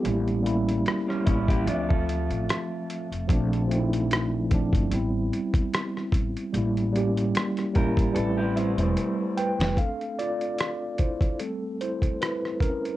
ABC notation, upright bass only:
X:1
M:4/4
L:1/16
Q:"Swing 16ths" 1/4=74
K:Aphr
V:1 name="Upright bass" clef=bass
A,,,4 z2 A,,,2 D,,3 A,,, z3 F,,, | B,,,6- B,,, G,,, A,,,2 z4 A,,, z | A,,,4 z2 A,,,2 A,,,3 E,,, z3 F,,, | z16 |]